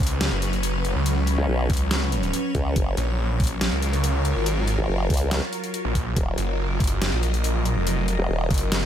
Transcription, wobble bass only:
1.38 C#2
1.49 B1
2.55 C#2
2.76 F#1
4.79 G#1
4.89 F#1
5.10 C#2
6.17 D#1
8.19 F1
8.29 D#1

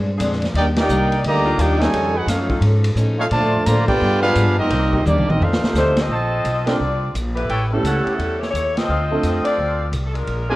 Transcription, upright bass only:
Already playing: G2
0.19 F2
0.54 D#2
0.89 C2
1.23 D2
1.58 D#2
1.93 F2
2.26 F#2
2.61 G#2
2.95 A2
3.31 A#2
3.42 A2
3.54 F2
3.66 A2
4.01 G2
4.35 G#2
4.46 G2
4.59 F2
4.70 C2
5.06 D#2
5.17 C2
5.29 A#1
5.41 F2
5.63 muted upright bass stroke
5.73 D2
6.08 A#1
6.45 B1
6.79 C2
7.14 A#1
7.49 A1
7.83 C#2
8.06 muted upright bass stroke
8.18 E2
8.53 D#2
8.88 D2
9.23 F2
9.58 D2
9.92 C2
10.27 A#1

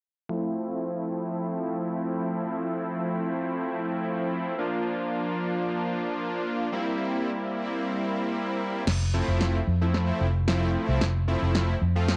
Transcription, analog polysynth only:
0.29 F3 A3 C4 E4
4.58 F3 A#3 D4 F4
6.72 G3 A#3 C4 E4
9.14 F3 A3 C4 E4
9.81 F3 A3 C4 E4
10.48 F3 A3 C4 E4
11.28 F3 A3 C4 E4
11.96 F3 A3 C4 F4

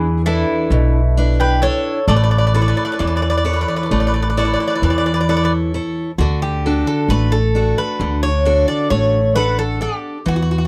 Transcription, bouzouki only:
Already playing: B4
0.26 A4
1.40 B4
1.63 C#5
2.08 D5
2.16 D5
2.24 D5
2.31 D5
2.38 D5
2.47 D5
2.54 D5
2.62 D5
2.68 D5
2.77 D5
2.85 D5
2.92 D5
3.00 D5
3.07 D5
3.17 D5
3.22 D5
3.30 D5
3.37 D5
3.45 D5
3.53 D5
3.61 D5
3.68 D5
3.76 D5
3.83 D5
3.92 D5
4.00 D5
4.07 D5
4.14 D5
4.22 D5
4.30 D5
4.38 D5
4.45 D5
4.54 D5
4.60 D5
4.68 D5
4.75 D5
4.83 D5
4.90 D5
4.98 D5
5.06 D5
5.14 D5
5.21 D5
5.29 D5
5.37 D5
5.45 D5
6.18 F#4
6.42 G4
6.87 A4
7.10 B4
7.32 A4
7.78 B4
8.23 C#5
8.68 D5
8.90 C#5
9.35 B4
9.59 A4
9.82 G4
10.28 F#4
10.36 F#4
10.42 F#4
10.51 F#4
10.58 F#4

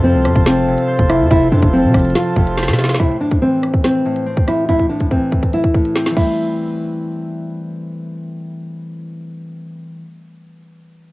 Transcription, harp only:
Already playing: C3 C4
0.04 F3
0.68 C3
0.88 C5
1.09 C3
1.31 C3
1.52 C3
1.73 F3
2.37 C3
2.57 C5
2.78 C3
3.00 A2
3.20 A2
3.42 E3
4.05 A2
4.26 C4
4.48 A2
4.69 A2
4.90 A2
5.11 E3
5.74 A2
5.95 C4
6.11 E3 G3
6.19 A3 C4

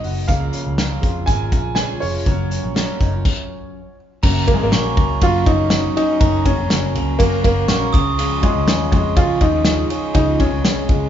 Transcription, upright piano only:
Already playing: D#5
0.28 F5
1.26 G#5
1.75 G#5
2.00 C#5
4.47 A#3
4.54 G#3
4.63 A#3
5.23 F4
5.47 D#4
5.97 D#4
6.46 C#4
7.19 A#3
7.44 A#3
8.43 G#3
8.92 G#3
9.17 F4
9.41 D#4
10.15 D#4
10.40 C#4

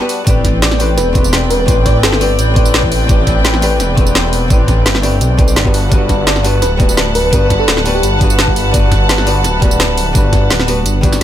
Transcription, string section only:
Already playing: B4 F#5 A5
0.27 C4 B4 D5 G5
5.74 B4 F#5 A5

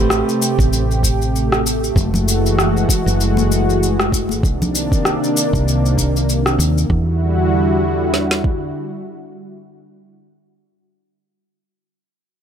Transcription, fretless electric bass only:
Already playing: A1
0.59 A1
1.96 F#1
3.06 F#1
4.43 C2
5.53 C2
6.59 D#2
6.90 E2

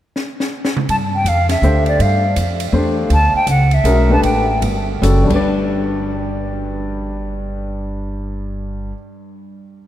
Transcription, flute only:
0.90 A5
1.15 G5
1.28 F5
1.50 E5
1.88 D5
2.02 F5
3.13 A5
3.36 G5
3.50 F#5
3.74 E5
4.12 A5
4.24 G5

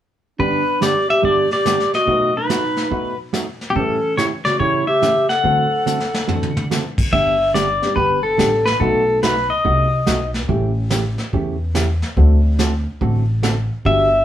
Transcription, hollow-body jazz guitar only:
0.39 G2 D3 G3 B3 D4 G4
0.81 G2 D3 G3 B3 D4 G4
1.22 G2 D3 G3 B3 D4 G4
1.65 G2 D3 G3 B3 D4 G4
2.08 B2 F#3 A3 D#4 F#4
2.49 B2 F#3 A3 D#4 F#4
2.91 B2 F#3 A3 D#4 F#4
3.33 B2 F#3 A3 D#4 F#4
3.76 A2 C#3 E3 A3 C#4 G4
4.18 A2 C#3 E3 A3 C#4 G4
4.60 A2 C#3 E3 A3 C#4 G4
5.02 A2 C#3 E3 A3 C#4 G4
5.44 D3 A3 C4 F#4 A4
5.86 D3 A3 C4 F#4 A4
6.28 D3 A3 C4 F#4 A4
6.71 D3 A3 C4 F#4 A4
7.12 D3 G3 B3 D4 G4
7.54 D3 G3 B3 D4 G4
7.96 D3 G3 B3 D4 G4
8.38 D3 G3 B3 D4 G4
8.80 B2 F#3 A3 D#4 F#4
9.23 B2 F#3 A3 D#4 F#4
9.65 B2 F#3 A3 D#4 F#4
10.07 B2 F#3 A3 D#4 F#4
10.48 C#3 E3 A3 C#4 G4
10.91 C#3 E3 A3 C#4 G4
11.34 C#3 E3 A3 C#4 G4
11.75 C#3 E3 A3 C#4 G4
12.17 D3 A3 C4 F#4 A4
12.59 D3 A3 C4 F#4 A4
13.01 D3 A3 C4 F#4 A4
13.43 D3 A3 C4 F#4 A4
13.85 D3 F#3 B3 D4 G4

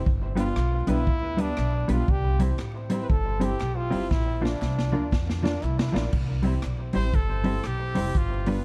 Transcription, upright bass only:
0.06 G1
0.56 B1
0.88 B1
1.07 D2
1.58 B1
1.89 B1
2.08 C2
2.59 A1
3.10 G1
3.61 B1
3.92 G1
4.11 A#1
4.62 C2
4.93 D2
5.12 F2
5.63 C2
5.95 A#1
6.13 C2
6.65 B1
6.95 A1
7.14 G1
7.65 B1
7.97 F1
8.15 G1

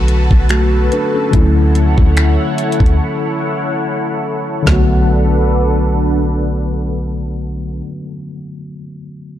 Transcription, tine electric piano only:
Already playing: D3 F#3 A3 B3 F#4
0.50 A3 F#4
0.92 D4 B4
1.14 C#4 A4
1.31 D3 F#3 A3 C#4
1.36 E4
4.63 D3 F#3
4.67 A3 B3
4.72 F#4

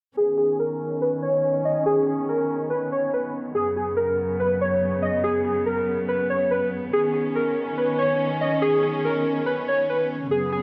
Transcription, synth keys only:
0.17 G#4
0.38 G#4
0.59 A#4
1.02 B4
1.22 C#5
1.65 D#5
1.86 G#4
2.07 G#4
2.29 A#4
2.70 B4
2.92 C#5
3.14 B4
3.55 G#4
3.76 G#4
3.97 A#4
4.40 B4
4.61 C#5
5.02 D#5
5.24 G#4
5.45 G#4
5.66 A#4
6.08 B4
6.30 C#5
6.51 B4
6.93 G#4
7.14 G#4
7.35 A#4
7.78 B4
7.98 C#5
8.41 D#5
8.62 G#4
8.83 G#4
9.05 A#4
9.46 B4
9.68 C#5
9.90 B4
10.31 G#4
10.52 G#4

